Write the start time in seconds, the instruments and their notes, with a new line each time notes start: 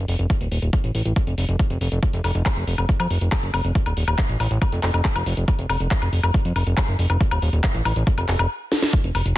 0.08 analog synth bass F1, open hi-hat
0.19 analog synth bass F1, closed hi-hat
0.30 kick, closed hi-hat
0.41 analog synth bass D#1, closed hi-hat
0.52 analog synth bass D#1, open hi-hat
0.62 analog synth bass D#1, closed hi-hat
0.73 kick, closed hi-hat
0.84 analog synth bass A1, closed hi-hat
0.95 analog synth bass A1, open hi-hat
1.05 analog synth bass A1, closed hi-hat
1.16 kick, closed hi-hat
1.27 analog synth bass F1, closed hi-hat
1.38 analog synth bass F1, open hi-hat
1.49 analog synth bass F1, closed hi-hat
1.59 kick, closed hi-hat
1.70 analog synth bass F1, closed hi-hat
1.81 analog synth bass F1, open hi-hat
1.92 analog synth bass F1, closed hi-hat
2.03 kick, closed hi-hat
2.13 analog synth bass F1, closed hi-hat
2.24 analog synth bass F1, open hi-hat, high woodblock
2.35 analog synth bass F1, closed hi-hat
2.46 kick, clap, closed hi-hat, high woodblock
2.57 analog synth bass F1, closed hi-hat
2.67 analog synth bass F1, open hi-hat
2.78 analog synth bass F1, closed hi-hat, high woodblock
2.89 kick, closed hi-hat
3.00 analog synth bass F2, closed hi-hat, high woodblock
3.11 analog synth bass F1, open hi-hat
3.21 analog synth bass F1, closed hi-hat
3.32 kick, clap, closed hi-hat, high woodblock
3.43 analog synth bass F#1, closed hi-hat
3.54 analog synth bass F1, open hi-hat, high woodblock
3.64 analog synth bass F1, closed hi-hat
3.75 kick, closed hi-hat
3.86 analog synth bass D#1, closed hi-hat, high woodblock
3.97 analog synth bass D#1, open hi-hat
4.08 analog synth bass D#1, closed hi-hat, high woodblock
4.18 kick, clap, closed hi-hat
4.29 analog synth bass A1, closed hi-hat
4.40 analog synth bass A1, open hi-hat, high woodblock
4.51 analog synth bass A1, closed hi-hat
4.62 kick, closed hi-hat, high woodblock
4.72 analog synth bass F1, closed hi-hat
4.83 analog synth bass F1, clap, open hi-hat
4.94 analog synth bass F1, closed hi-hat, high woodblock
5.05 kick, clap, closed hi-hat
5.16 analog synth bass F1, closed hi-hat, high woodblock
5.26 analog synth bass F1, open hi-hat
5.37 analog synth bass F1, closed hi-hat
5.48 kick, closed hi-hat, high woodblock
5.59 analog synth bass F1, closed hi-hat
5.69 analog synth bass F1, open hi-hat, high woodblock
5.80 analog synth bass F1, closed hi-hat
5.91 kick, clap, closed hi-hat
6.02 analog synth bass F1, closed hi-hat, high woodblock
6.13 analog synth bass F1, open hi-hat
6.23 analog synth bass F1, closed hi-hat, high woodblock
6.34 kick, closed hi-hat
6.45 analog synth bass F2, closed hi-hat
6.56 analog synth bass F1, open hi-hat, high woodblock
6.67 analog synth bass F1, closed hi-hat
6.77 kick, clap, closed hi-hat, high woodblock
6.88 analog synth bass F#1, closed hi-hat
6.99 analog synth bass F1, open hi-hat
7.10 analog synth bass F1, closed hi-hat, high woodblock
7.21 kick, closed hi-hat
7.31 analog synth bass D#1, closed hi-hat, high woodblock
7.42 analog synth bass D#1, open hi-hat
7.53 analog synth bass D#1, closed hi-hat
7.64 kick, clap, closed hi-hat, high woodblock
7.75 analog synth bass A1, closed hi-hat
7.85 analog synth bass A1, open hi-hat, high woodblock
7.96 analog synth bass A1, closed hi-hat
8.07 kick, closed hi-hat
8.18 analog synth bass F1, closed hi-hat, high woodblock
8.29 analog synth bass F1, clap, open hi-hat
8.39 analog synth bass F1, closed hi-hat, high woodblock
8.72 snare
8.82 snare
8.93 kick, closed hi-hat
9.04 analog synth bass F1, closed hi-hat
9.15 analog synth bass F1, open hi-hat, high woodblock
9.26 analog synth bass F1, closed hi-hat